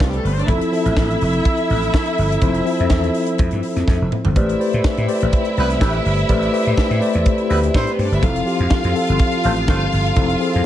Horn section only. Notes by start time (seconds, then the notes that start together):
5.57 G3 B3 E4 B4
5.81 G3 B3 E4 B4
7.50 G3 B3 E4 B4
7.74 G3 C4 E4 C5
9.44 A3 C4 F4 C5
9.68 A3 C4 F4 C5